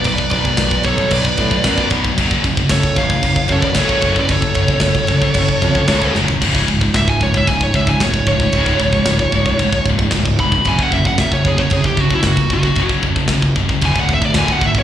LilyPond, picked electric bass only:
\new Staff \with { instrumentName = "Picked electric bass" } { \clef bass \time 4/4 \tempo 4 = 113 b,,8 b,,8 b,,8 b,,8 b,,8 a,8 fis,8 b,,8 | fis,,4 fis,,8 a,,8 fis,,8 fis,8 fis,,8 fis,,8 | fis,,8 fis,,8 fis,,8 fis,,8 fis,,8 eis,8 cis,8 fis,,8 | cis,,8 cis,,8 cis,,8 cis,,8 cis,,8 cis,,8 cis,,8 cis,,8 |
cis,,8 cis,,8 cis,,8 cis,,8 cis,,8 cis,,8 cis,,8 eis,,8 | fis,,8 fis,,8 fis,,8 fis,,8 fis,,8 fis,,8 fis,,8 fis,,8 | fis,,8 fis,,8 fis,,8 fis,,8 d,,8 d,,8 d,,8 gis,,8 | }